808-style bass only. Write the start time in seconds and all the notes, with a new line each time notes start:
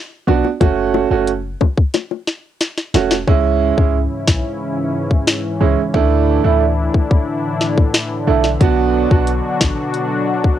0.27 B1
0.61 F#1
1.11 F#1
2.94 E1
3.27 C#2
3.78 C#2
4.28 B1
5.61 C#2
5.94 D2
6.44 D2
8.27 B1
8.61 B1
9.11 B1
9.61 A1